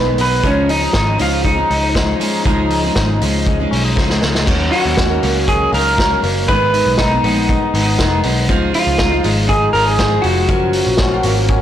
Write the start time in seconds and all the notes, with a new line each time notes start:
Already playing: B1 D#3 G#3 B3 D#4 G#4 B4
0.18 B1 G#3 B3 D#4 G#4 B4, open hi-hat
0.43 C#2 C#3 F3 G#3 C#4 D#4 G#4, kick, closed hi-hat
0.47 C#4
0.69 G#3 D#4, open hi-hat
0.81 G#3 C#4 D#4 G#4
0.93 G#1 D#4, kick, snare, closed hi-hat
1.18 C#2 F3 G#3 C#4 D#4 F4 G#4, open hi-hat
1.44 G#3 D#4, kick, closed hi-hat
1.56 G#3 C#4 D#4 G#4
1.70 C#2 D#4, open hi-hat
1.94 F3 G#3 C#4 D#4 G#4, kick, snare, closed hi-hat
2.20 G#3 C#4 D#4 G#4, open hi-hat
2.45 C#2 C#3 F3 G#3 C#4 D#4 G#4, kick, closed hi-hat
2.70 G#3, open hi-hat
2.84 G#3 C#4 D#4 G#4
2.96 G#1 D#4, kick, snare, closed hi-hat
3.21 C#2 F3 G#3 C#4 D#4 G#4, open hi-hat
3.46 G#3, kick, closed hi-hat
3.60 G#3 C#4 D#4 G#4
3.71 B1 C#4, open hi-hat
3.84 D#4
3.96 C#2 F3 G#3 C#4 D#4 G#4, kick, snare
4.10 snare
4.21 C#2 G#3 C#4 D#4 G#4, snare
4.35 snare
4.46 D#2 D#3 F#3 C#4 D#4 A#4, kick, crash
4.72 F#3 F#4, open hi-hat
4.86 D#2
4.97 C#4, kick, snare, closed hi-hat
5.10 C#4 D#4 A#4
5.23 C#2 F#3 A#3 C#4 D#4 A#4, open hi-hat
5.47 C#4 G#4, kick, closed hi-hat
5.73 C#2 F#3 A#3 C#4 D#4 A#4, open hi-hat
5.97 F#3 C#4 D#4 A#4, kick, snare, closed hi-hat
6.22 F#1 F#3 A#3 C#4 D#4 A#4, open hi-hat
6.48 G#1 G#2 D#3 G#3 B3 D#4 G#4 B4, kick, closed hi-hat
6.74 D#3, open hi-hat
6.87 B1
6.98 D#4, kick, snare, closed hi-hat
7.11 G#3 B3 D#4 G#4
7.24 A#1 G#3 B3 D#4 G#4, open hi-hat
7.49 D#4, kick, closed hi-hat
7.74 G#1 G#3 B3 D#4 G#4, open hi-hat
7.99 F1 D#3 G#3 B3 D#4 G#4, kick, snare, closed hi-hat
8.23 B1 G#3 B3 D#4 G#4, open hi-hat
8.49 C#2 C#3 F3 G#3 D#4 F4 G#4, kick, closed hi-hat
8.74 F3 F4, open hi-hat
8.87 C#2
8.98 D#4, kick, snare, closed hi-hat
9.12 D#4 F4 G#4
9.23 G#1 G#3 D#4 F4 G#4, open hi-hat
9.49 D#4 G#4, kick, closed hi-hat
9.73 G#1 G#3 D#4 F4 G#4 A#4, open hi-hat
9.85 G#4
9.98 F3 G#3 D#4 F4 G#4, kick, snare, closed hi-hat
10.22 F1 G#3 D#4 F#4, open hi-hat
10.26 F4 G#4
10.48 F#1 F3 F#3 C#4 A#4, kick, closed hi-hat
10.73 F3, open hi-hat
10.87 A#1
10.97 C#4, kick, snare, closed hi-hat
11.11 C#4 F4 A#4
11.23 G#1 F#3 A#3 C#4 A#4, open hi-hat
11.48 C#4, kick, closed hi-hat